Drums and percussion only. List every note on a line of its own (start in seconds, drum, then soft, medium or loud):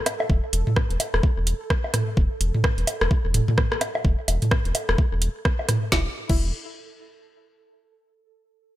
0.06 cross-stick medium
0.06 closed hi-hat medium
0.06 low woodblock medium
0.20 low woodblock medium
0.30 kick loud
0.53 closed hi-hat medium
0.67 mid tom medium
0.76 kick loud
0.76 cross-stick medium
0.91 closed hi-hat soft
1.00 closed hi-hat medium
1.00 low woodblock medium
1.14 cross-stick medium
1.23 kick loud
1.47 closed hi-hat medium
1.70 kick loud
1.70 cross-stick medium
1.84 low woodblock soft
1.94 cross-stick medium
1.94 closed hi-hat medium
1.94 mid tom medium
2.17 kick loud
2.41 closed hi-hat medium
2.55 mid tom medium
2.64 kick loud
2.64 cross-stick loud
2.78 closed hi-hat soft
2.87 closed hi-hat medium
2.87 low woodblock medium
3.01 cross-stick medium
3.11 kick loud
3.34 closed hi-hat medium
3.34 mid tom medium
3.48 mid tom medium
3.58 kick loud
3.58 cross-stick medium
3.72 cross-stick medium
3.81 cross-stick medium
3.81 closed hi-hat medium
3.81 low woodblock medium
3.95 low woodblock medium
4.05 kick loud
4.28 closed hi-hat medium
4.28 low woodblock soft
4.42 closed hi-hat soft
4.42 mid tom medium
4.51 kick loud
4.51 cross-stick loud
4.65 closed hi-hat soft
4.75 closed hi-hat medium
4.75 low woodblock medium
4.89 cross-stick medium
4.98 kick loud
5.22 closed hi-hat medium
5.45 kick loud
5.45 cross-stick medium
5.59 low woodblock soft
5.69 cross-stick medium
5.69 closed hi-hat medium
5.69 mid tom medium
5.92 kick loud
5.92 snare medium
6.29 kick loud
6.29 crash medium